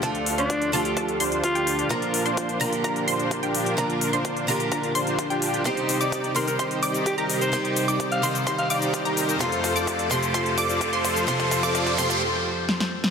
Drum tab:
HH |xxoxxxoxxxoxxxox|xxoxxxoxxxoxxxox|xxoxxxoxxxoxxxox|xxoxxxoxxxoxxxox|
SH |----------------|----------------|----------------|x-xxx-xxx-xxx-xx|
SD |----------------|----------------|----------------|----------------|
BD |o---o---o---o---|o---o---o---o---|o---o---o---o---|o---o---o---o---|

HH |xxoxxxoxxxoxxxox|xxoxxxoxxxoxxxox|xxoxxxox--------|
SH |x-xxx-xxx-xxx-xx|x-xxx-xxx-xxx-xx|x-xxx-xx--------|
SD |----------------|----------------|------------oo-o|
BD |o---o---o---o---|o-o-o-o-o-o-o-o-|oooooooo--------|